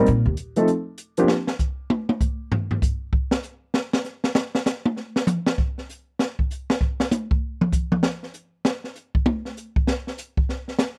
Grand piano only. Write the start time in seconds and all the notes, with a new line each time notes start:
0.56 F3 A3 C4 D#4 A4
1.18 F3 A#3 C4 D4 G4